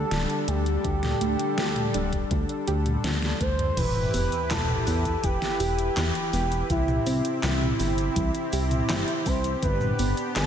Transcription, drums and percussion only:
0.11 snare loud
0.11 closed hi-hat medium
0.30 closed hi-hat soft
0.48 closed hi-hat medium
0.66 closed hi-hat medium
0.84 kick loud
0.84 closed hi-hat medium
1.03 snare soft
1.03 closed hi-hat soft
1.03 mid tom medium
1.21 closed hi-hat medium
1.39 closed hi-hat medium
1.58 snare loud
1.58 closed hi-hat medium
1.76 closed hi-hat soft
1.76 mid tom medium
1.94 closed hi-hat medium
2.13 kick medium
2.13 closed hi-hat medium
2.31 kick loud
2.31 closed hi-hat medium
2.49 closed hi-hat soft
2.68 closed hi-hat medium
2.86 closed hi-hat medium
2.86 mid tom medium
3.04 snare loud
3.04 closed hi-hat medium
3.04 high tom medium
3.22 snare medium
3.22 closed hi-hat soft
3.41 kick loud
3.41 closed hi-hat medium
3.59 closed hi-hat medium
3.59 mid tom medium
3.77 kick loud
3.77 closed hi-hat medium
3.77 crash loud
3.77 cabasa soft
3.96 mid tom medium
3.96 cabasa soft
4.14 open hi-hat medium
4.14 cabasa medium
4.32 closed hi-hat medium
4.32 cabasa soft
4.51 snare loud
4.51 clap loud
4.51 closed hi-hat medium
4.51 cabasa soft
4.69 mid tom medium
4.69 cabasa soft
4.87 open hi-hat medium
4.87 cabasa medium
5.05 kick medium
5.05 closed hi-hat medium
5.05 cabasa soft
5.24 kick loud
5.24 closed hi-hat medium
5.24 cabasa soft
5.42 snare soft
5.42 closed hi-hat soft
5.42 cabasa soft
5.60 open hi-hat medium
5.60 cabasa medium
5.79 closed hi-hat medium
5.79 cabasa soft
5.97 snare loud
5.97 clap loud
5.97 closed hi-hat medium
5.97 cabasa soft
6.15 closed hi-hat soft
6.15 cabasa soft
6.33 open hi-hat medium
6.33 cabasa medium
6.52 closed hi-hat medium
6.52 cabasa soft
6.70 kick loud
6.70 closed hi-hat medium
6.70 cabasa soft
6.88 mid tom medium
6.88 cabasa soft
7.07 open hi-hat medium
7.07 cabasa medium
7.25 closed hi-hat medium
7.25 cabasa soft
7.43 snare loud
7.43 clap loud
7.43 closed hi-hat medium
7.43 cabasa soft
7.61 mid tom medium
7.61 cabasa soft
7.80 open hi-hat medium
7.80 cabasa medium
7.98 closed hi-hat medium
7.98 cabasa soft
8.16 kick loud
8.16 closed hi-hat medium
8.16 cabasa soft
8.35 closed hi-hat soft
8.35 cabasa soft
8.53 open hi-hat medium
8.53 cabasa medium
8.71 closed hi-hat medium
8.71 mid tom medium
8.71 cabasa soft
8.89 snare loud
8.89 clap loud
8.89 closed hi-hat medium
8.89 cabasa soft
9.08 closed hi-hat soft
9.08 cabasa soft
9.26 kick loud
9.26 open hi-hat medium
9.26 cabasa medium
9.44 closed hi-hat medium
9.44 cabasa soft
9.63 kick loud
9.63 closed hi-hat medium
9.63 cabasa soft
9.81 mid tom loud
9.81 cabasa soft
9.99 open hi-hat medium
9.99 cabasa medium
10.17 closed hi-hat medium
10.17 cabasa soft
10.36 snare loud
10.36 clap medium
10.36 closed hi-hat medium
10.36 cabasa soft

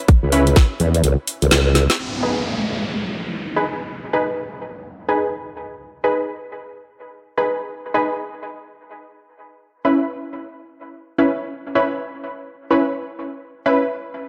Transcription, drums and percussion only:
0.08 kick loud
0.08 closed hi-hat medium
0.32 open hi-hat loud
0.47 closed hi-hat medium
0.56 kick loud
0.56 snare loud
0.56 closed hi-hat medium
0.80 open hi-hat medium
0.94 closed hi-hat medium
1.04 closed hi-hat medium
1.27 open hi-hat loud
1.42 closed hi-hat medium
1.51 snare loud
1.51 closed hi-hat medium
1.75 snare medium
1.75 open hi-hat medium
1.90 snare medium
1.90 closed hi-hat medium

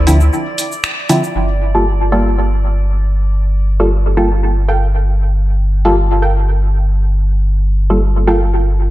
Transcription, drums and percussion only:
0.07 open hi-hat medium
0.07 shaker medium
0.21 shaker soft
0.33 shaker soft
0.58 open hi-hat medium
0.58 shaker medium
0.72 shaker medium
0.84 finger snap medium
0.84 shaker soft
1.09 open hi-hat medium
1.09 shaker medium
1.24 shaker soft

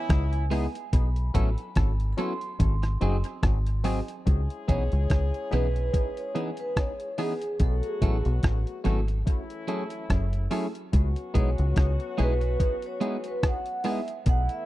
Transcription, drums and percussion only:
0.09 kick loud
0.09 cross-stick loud
0.09 closed hi-hat medium
0.33 closed hi-hat medium
0.51 open hi-hat medium
0.75 closed hi-hat medium
0.93 kick loud
0.93 closed hi-hat medium
1.16 closed hi-hat medium
1.35 kick loud
1.35 closed hi-hat medium
1.58 closed hi-hat medium
1.75 kick loud
1.75 cross-stick loud
1.75 closed hi-hat medium
2.00 closed hi-hat soft
2.18 closed hi-hat medium
2.41 closed hi-hat soft
2.60 kick loud
2.60 closed hi-hat medium
2.83 cross-stick medium
2.83 closed hi-hat soft
3.01 closed hi-hat medium
3.24 closed hi-hat medium
3.43 kick loud
3.43 cross-stick loud
3.43 closed hi-hat medium
3.66 closed hi-hat medium
3.84 open hi-hat medium
4.08 closed hi-hat medium
4.27 kick loud
4.27 closed hi-hat medium
4.50 closed hi-hat medium
4.68 kick loud
4.68 closed hi-hat medium
4.92 closed hi-hat soft
5.10 kick loud
5.10 cross-stick loud
5.10 closed hi-hat medium
5.34 closed hi-hat soft
5.53 closed hi-hat medium
5.76 closed hi-hat medium
5.94 kick loud
5.94 closed hi-hat medium
6.17 closed hi-hat soft
6.36 closed hi-hat medium
6.57 closed hi-hat medium
6.77 kick loud
6.77 cross-stick loud
6.77 closed hi-hat medium
7.00 closed hi-hat medium
7.18 open hi-hat medium
7.42 closed hi-hat medium
7.60 kick loud
7.60 closed hi-hat medium
7.83 closed hi-hat medium
8.02 kick medium
8.02 closed hi-hat medium
8.25 closed hi-hat soft
8.43 kick loud
8.43 cross-stick loud
8.43 closed hi-hat medium
8.67 closed hi-hat soft
8.85 closed hi-hat medium
9.08 closed hi-hat medium
9.27 kick loud
9.27 closed hi-hat medium
9.50 closed hi-hat soft
9.68 closed hi-hat medium
9.90 closed hi-hat medium
10.10 kick loud
10.10 cross-stick loud
10.10 closed hi-hat medium
10.33 closed hi-hat medium
10.51 open hi-hat medium
10.75 closed hi-hat medium
10.93 kick loud
10.93 closed hi-hat medium
11.16 closed hi-hat medium
11.35 kick medium
11.35 closed hi-hat medium
11.58 closed hi-hat medium
11.76 kick loud
11.76 cross-stick loud
11.76 closed hi-hat medium
12.00 closed hi-hat soft
12.18 closed hi-hat medium
12.41 closed hi-hat soft
12.60 kick loud
12.60 closed hi-hat medium
12.82 closed hi-hat soft
13.01 closed hi-hat medium
13.24 closed hi-hat medium
13.43 kick loud
13.43 cross-stick loud
13.43 closed hi-hat medium
13.66 closed hi-hat medium
13.84 open hi-hat medium
14.08 closed hi-hat medium
14.26 kick loud
14.26 closed hi-hat medium
14.49 closed hi-hat medium

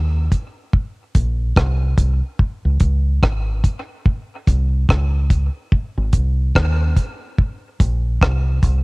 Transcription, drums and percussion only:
0.32 kick medium
0.32 closed hi-hat medium
0.73 kick loud
1.15 kick medium
1.15 closed hi-hat medium
1.56 kick loud
1.56 cross-stick loud
1.98 kick medium
1.98 closed hi-hat medium
2.39 kick loud
2.80 kick medium
2.80 closed hi-hat medium
3.23 kick loud
3.23 cross-stick loud
3.64 kick medium
3.64 closed hi-hat medium
4.06 kick loud
4.47 kick medium
4.47 closed hi-hat medium
4.89 kick loud
4.89 cross-stick loud
5.30 kick medium
5.30 closed hi-hat medium
5.72 kick loud
6.13 kick medium
6.13 closed hi-hat medium
6.55 kick loud
6.55 cross-stick loud
6.96 kick medium
6.96 closed hi-hat medium
7.38 kick loud
7.80 kick medium
7.80 closed hi-hat medium
8.21 kick loud
8.21 cross-stick loud
8.63 kick medium
8.63 closed hi-hat medium

